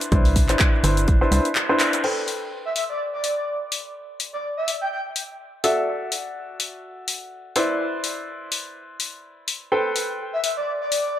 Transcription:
0.01 closed hi-hat medium
0.01 cabasa soft
0.12 0.51 C2 loud
0.12 0.46 D4 medium
0.12 0.46 E4 medium
0.12 0.46 B4 medium
0.12 0.46 C5 medium
0.12 kick loud
0.12 closed hi-hat medium
0.12 cabasa soft
0.25 open hi-hat medium
0.36 kick medium
0.36 open hi-hat loud
0.36 cabasa medium
0.49 0.56 G1 loud
0.49 0.81 D4 medium
0.49 0.81 E4 medium
0.49 0.81 B4 medium
0.49 0.81 C5 medium
0.49 clap soft
0.49 closed hi-hat medium
0.49 cabasa soft
0.59 kick loud
0.59 clap loud
0.59 closed hi-hat medium
0.59 cabasa soft
0.84 1.25 G1 medium
0.84 1.18 D4 medium
0.84 1.18 E4 medium
0.84 1.18 B4 medium
0.84 1.18 C5 medium
0.84 open hi-hat loud
0.84 cabasa medium
0.97 closed hi-hat medium
0.97 cabasa soft
1.08 kick loud
1.08 closed hi-hat medium
1.08 cabasa soft
1.21 1.30 D4 medium
1.21 1.30 E4 medium
1.21 1.30 B4 medium
1.21 1.30 C5 loud
1.32 1.40 C2 medium
1.32 1.46 D4 medium
1.32 1.46 E4 medium
1.32 1.46 B4 medium
1.32 1.46 C5 loud
1.32 open hi-hat loud
1.32 cabasa medium
1.45 closed hi-hat medium
1.45 cabasa soft
1.55 clap loud
1.55 closed hi-hat medium
1.55 cabasa soft
1.69 2.01 D4 loud
1.69 2.01 E4 medium
1.69 2.01 B4 medium
1.69 2.01 C5 loud
1.80 clap medium
1.80 open hi-hat medium
1.80 cabasa medium
1.93 closed hi-hat medium
1.93 cabasa soft
2.04 5.61 A4 medium
2.04 5.61 B4 medium
2.04 5.61 C5 medium
2.04 5.61 G5 medium
2.04 crash medium
2.28 open hi-hat medium
2.65 2.72 E5 medium
2.76 2.85 E5 medium
2.76 open hi-hat medium
2.90 3.03 D5 medium
3.13 3.48 D5 medium
3.24 open hi-hat loud
3.72 open hi-hat medium
4.20 open hi-hat loud
4.33 4.47 D5 medium
4.57 4.71 E5 medium
4.68 open hi-hat medium
4.81 4.88 G5 medium
4.92 5.01 G5 medium
5.16 open hi-hat loud
5.64 7.53 F#4 medium
5.64 7.53 A4 medium
5.64 7.53 D5 medium
5.64 7.53 E5 medium
5.64 open hi-hat loud
6.12 open hi-hat loud
6.60 open hi-hat loud
7.08 open hi-hat loud
7.56 9.69 E4 medium
7.56 9.69 B4 medium
7.56 9.69 C5 medium
7.56 9.69 D5 medium
7.56 open hi-hat loud
8.04 open hi-hat medium
8.52 open hi-hat medium
9.00 open hi-hat loud
9.48 open hi-hat loud
9.72 11.19 A4 medium
9.72 11.19 B4 medium
9.72 11.19 C5 medium
9.72 11.19 G5 medium
9.96 open hi-hat loud
10.33 10.40 E5 medium
10.44 10.52 E5 medium
10.44 open hi-hat loud
10.57 10.71 D5 medium
10.81 11.04 D5 medium
10.92 open hi-hat loud
11.05 11.19 D5 medium

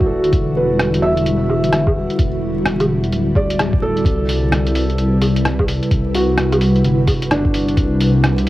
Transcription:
0.00 0.32 D1 loud
0.00 4.01 D3 medium
0.00 8.49 G3 medium
0.00 8.49 E4 medium
0.00 1.12 F#4 medium
0.00 4.01 F#4 medium
0.00 0.57 B4 medium
0.00 3.36 D5 medium
0.00 1.02 E5 medium
0.00 kick loud
0.06 1.24 A4 medium
0.24 closed hi-hat soft
0.33 2.08 E1 medium
0.33 kick loud
0.33 closed hi-hat medium
0.57 1.82 B4 medium
0.80 cross-stick loud
0.80 closed hi-hat medium
0.94 closed hi-hat medium
1.02 2.28 E5 medium
1.17 closed hi-hat soft
1.26 closed hi-hat medium
1.50 low woodblock soft
1.64 closed hi-hat medium
1.73 cross-stick loud
1.73 closed hi-hat medium
1.87 kick loud
1.87 low woodblock soft
2.10 closed hi-hat soft
2.19 3.11 E1 medium
2.19 kick loud
2.19 closed hi-hat medium
2.66 cross-stick loud
2.66 closed hi-hat medium
2.80 closed hi-hat medium
2.80 low woodblock medium
3.04 closed hi-hat soft
3.12 4.04 D1 loud
3.12 closed hi-hat medium
3.35 4.25 D5 medium
3.35 kick loud
3.35 low woodblock soft
3.50 closed hi-hat medium
3.59 cross-stick loud
3.59 closed hi-hat medium
3.59 low woodblock soft
3.73 kick loud
3.82 4.25 A4 medium
3.97 closed hi-hat soft
4.05 5.80 C2 loud
4.05 8.49 C3 medium
4.05 8.49 B4 medium
4.05 kick loud
4.05 closed hi-hat medium
4.29 open hi-hat medium
4.52 cross-stick loud
4.52 closed hi-hat medium
4.66 closed hi-hat medium
4.75 open hi-hat medium
4.90 closed hi-hat soft
4.98 closed hi-hat medium
5.21 open hi-hat medium
5.21 low woodblock soft
5.36 closed hi-hat medium
5.45 cross-stick loud
5.45 closed hi-hat medium
5.59 kick loud
5.59 low woodblock soft
5.68 open hi-hat medium
5.83 closed hi-hat soft
5.91 6.83 C2 loud
5.91 kick loud
5.91 closed hi-hat medium
6.15 7.40 F#4 medium
6.15 open hi-hat medium
6.38 cross-stick loud
6.38 closed hi-hat medium
6.52 closed hi-hat medium
6.52 low woodblock medium
6.61 open hi-hat medium
6.76 closed hi-hat soft
6.84 7.76 G1 loud
6.84 closed hi-hat medium
7.07 kick loud
7.07 open hi-hat medium
7.07 low woodblock soft
7.22 closed hi-hat medium
7.31 8.49 D4 medium
7.31 cross-stick loud
7.31 closed hi-hat medium
7.45 kick loud
7.54 open hi-hat medium
7.69 closed hi-hat soft
7.77 8.49 C2 loud
7.77 kick loud
7.77 closed hi-hat medium
8.01 open hi-hat medium
8.24 cross-stick loud
8.24 closed hi-hat medium
8.38 closed hi-hat medium

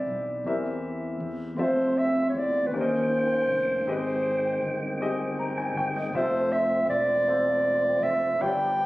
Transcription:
0.00 0.41 E3 medium
0.00 0.22 C4 medium
0.00 0.23 G4 medium
0.00 0.23 B4 medium
0.00 0.80 D5 medium
0.00 0.23 E5 medium
0.07 0.42 B1 medium
0.44 1.17 E2 medium
0.44 1.56 E3 medium
0.44 1.37 C4 medium
0.44 1.37 G4 medium
0.44 1.37 A#4 medium
0.44 1.37 E5 medium
1.20 1.56 E2 medium
1.56 2.31 F2 medium
1.56 2.70 C3 medium
1.56 2.70 A3 soft
1.56 2.71 C4 soft
1.56 2.50 C4 medium
1.56 2.70 F4 medium
1.56 2.50 F4 medium
1.56 2.50 A4 medium
1.56 2.50 E5 medium
1.61 2.00 C5 medium
1.98 2.29 E5 medium
2.29 2.39 C#5 medium
2.35 2.70 E2 medium
2.35 2.68 D5 medium
2.67 2.78 B4 medium
2.72 3.44 D#2 medium
2.72 3.83 D#3 medium
2.72 6.11 D#3 medium
2.72 3.86 A#3 soft
2.72 3.64 C#4 medium
2.72 3.86 C#4 soft
2.72 3.64 G4 soft
2.72 3.65 A#4 soft
2.72 2.80 D5 soft
2.72 6.11 G5 medium
2.77 3.88 C5 medium
2.81 3.68 D#5 medium
3.47 3.83 F1 medium
3.85 4.58 G#1 medium
3.85 6.12 G#3 soft
3.85 4.97 G#3 medium
3.85 8.36 C4 medium
3.85 4.78 C4 medium
3.85 4.78 G4 medium
3.85 4.78 G#4 medium
3.85 4.79 D#5 medium
3.91 4.99 C5 medium
4.62 5.72 G1 medium
5.01 5.91 C4 medium
5.01 5.92 G4 medium
5.01 5.92 G#4 medium
5.01 5.39 D#5 medium
5.39 5.57 A#5 medium
5.58 5.75 G#5 medium
5.75 6.10 G1 medium
5.75 5.95 G5 medium
5.96 6.32 D#5 soft
6.13 6.85 F1 medium
6.13 8.37 F3 medium
6.13 8.38 A3 soft
6.13 7.05 C4 medium
6.13 8.38 F4 medium
6.13 7.05 F4 medium
6.13 6.21 G4 soft
6.13 6.54 C5 medium
6.13 7.05 E5 medium
6.21 7.08 A4 medium
6.52 6.89 E5 medium
6.87 7.98 E1 medium
6.87 8.05 D5 medium
7.27 8.18 C4 medium
7.27 8.18 F4 soft
7.27 8.18 A4 medium
7.27 8.18 C5 medium
8.02 8.37 F1 medium
8.02 8.43 E5 medium
8.38 8.86 G1 medium
8.38 8.86 G2 soft
8.38 8.86 F3 medium
8.38 8.86 B3 soft
8.38 8.86 B3 medium
8.38 8.86 D4 soft
8.38 8.86 F4 medium
8.38 8.86 G4 medium
8.38 8.47 C#5 medium
8.38 8.86 G5 medium
8.48 8.86 D5 medium

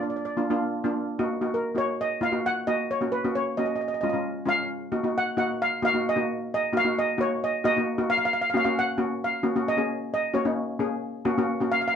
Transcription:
0.00 0.21 A#3 medium
0.00 0.21 D4 medium
0.00 0.21 F4 medium
0.00 0.09 D5 soft
0.10 0.15 D5 medium
0.16 0.23 D5 soft
0.25 0.32 D5 medium
0.37 0.45 A#3 medium
0.37 0.46 D4 medium
0.37 0.45 F4 medium
0.50 0.71 A#3 medium
0.50 0.71 D4 medium
0.50 0.71 F4 medium
0.84 1.05 A#3 medium
0.84 1.05 D4 medium
0.84 1.05 F4 medium
1.19 1.32 A#3 medium
1.19 1.32 D#4 medium
1.19 1.32 F#4 medium
1.41 1.62 A#3 medium
1.41 1.62 D#4 medium
1.41 1.62 F#4 medium
1.54 1.77 A#4 medium
1.75 2.02 A#3 medium
1.75 2.03 D#4 medium
1.75 2.03 F#4 medium
1.75 2.00 C#5 medium
2.01 2.23 D#5 medium
2.21 2.28 A#3 medium
2.21 2.28 D#4 medium
2.21 2.28 F4 medium
2.21 2.45 F5 medium
2.32 2.52 A#3 medium
2.32 2.52 D#4 medium
2.32 2.52 F#4 medium
2.46 2.68 F#5 loud
2.67 2.87 A#3 medium
2.67 2.87 D#4 medium
2.67 2.87 F#4 medium
2.67 2.90 D#5 medium
2.91 3.13 C#5 medium
3.01 3.14 A#3 medium
3.01 3.14 C#4 medium
3.01 3.14 F#4 medium
3.12 3.35 B4 medium
3.24 3.44 A#3 medium
3.24 3.44 C#4 medium
3.24 3.44 F#4 medium
3.35 3.58 C#5 medium
3.57 3.80 A#3 medium
3.57 3.80 C#4 medium
3.57 3.80 F#4 medium
3.57 3.64 D#5 medium
3.66 3.72 D#5 medium
3.76 3.80 D#5 medium
3.81 3.87 D#5 soft
3.88 3.93 D#5 medium
3.94 4.00 D#5 medium
4.01 4.09 G#3 medium
4.01 4.09 C#4 medium
4.01 4.10 F4 medium
4.01 4.08 D#5 medium
4.09 4.33 F4 medium
4.09 4.16 D#5 medium
4.14 4.34 G#3 medium
4.14 4.34 C#4 medium
4.45 4.67 G#3 medium
4.45 4.67 C#4 medium
4.45 4.67 F4 medium
4.45 5.17 F5 loud
4.92 4.99 A#3 medium
4.92 4.99 D#4 medium
4.92 4.99 F#4 medium
5.04 5.24 A#3 medium
5.04 5.24 D#4 medium
5.04 5.24 F#4 medium
5.18 5.37 F#5 loud
5.37 5.64 A#3 medium
5.37 5.64 D#4 medium
5.37 5.64 F#4 medium
5.37 5.59 F#5 medium
5.62 5.84 F5 loud
5.82 5.89 A#3 medium
5.82 5.89 D#4 medium
5.82 5.90 F#4 medium
5.82 6.05 F5 loud
5.94 6.07 A#3 medium
5.94 6.07 D#4 medium
5.94 6.08 F#4 medium
6.09 6.53 D#5 medium
6.16 6.50 A#3 medium
6.16 6.50 D#4 medium
6.16 6.50 F#4 medium
6.54 6.75 D#5 medium
6.73 6.80 A#3 medium
6.73 6.80 D#4 medium
6.73 6.80 F#4 medium
6.77 6.86 F5 loud
6.84 7.05 A#3 medium
6.84 7.05 D#4 medium
6.84 7.05 F#4 medium
6.99 7.18 D#5 medium
7.18 7.45 A#3 medium
7.18 7.45 D#4 medium
7.18 7.45 F#4 medium
7.18 7.43 C#5 medium
7.44 7.63 D#5 medium
7.64 7.71 A#3 medium
7.64 7.71 D#4 medium
7.64 7.71 F#4 medium
7.64 8.11 D#5 medium
7.77 7.89 A#3 medium
7.77 7.89 D#4 medium
7.77 7.89 F#4 medium
7.98 8.31 A#3 medium
7.98 8.31 D#4 medium
7.98 8.31 F#4 medium
8.10 8.16 F5 loud
8.18 8.24 F5 medium
8.25 8.31 F5 medium
8.33 8.39 F5 medium
8.42 8.47 F5 medium
8.50 8.61 C#4 medium
8.50 8.55 F5 medium
8.54 8.61 A#3 medium
8.54 8.61 F#4 medium
8.54 8.62 F5 medium
8.65 8.85 A#3 medium
8.65 8.85 C#4 medium
8.65 8.86 F#4 medium
8.65 8.70 F5 medium
8.79 9.20 F#5 loud
8.98 9.26 A#3 medium
8.98 9.26 C#4 medium
8.98 9.26 F#4 medium
9.24 9.65 F5 medium
9.43 9.51 A#3 medium
9.43 9.51 C#4 medium
9.43 9.51 F#4 medium
9.55 9.69 A#3 medium
9.55 9.69 C#4 medium
9.55 9.69 F#4 medium
9.68 10.12 D#5 medium
9.77 10.11 A#3 medium
9.77 10.12 C#4 medium
9.77 10.12 G#4 medium
10.14 10.34 D#5 medium
10.34 10.42 A#3 medium
10.34 10.42 C#4 medium
10.34 10.41 F#4 medium
10.34 10.77 C#5 medium
10.45 10.66 A#3 medium
10.45 10.66 C#4 medium
10.45 10.66 D#4 medium
10.79 11.07 A#3 medium
10.79 11.07 C#4 medium
10.79 11.08 G#4 medium
11.25 11.32 A#3 medium
11.25 11.33 C#4 medium
11.25 11.33 F#4 loud
11.38 11.51 A#3 medium
11.38 11.51 C#4 medium
11.38 11.51 F#4 medium
11.60 11.94 A#3 medium
11.60 11.94 C#4 medium
11.60 11.94 F#4 medium
11.72 11.79 F5 loud
11.81 11.86 F5 medium
11.88 11.93 F5 medium

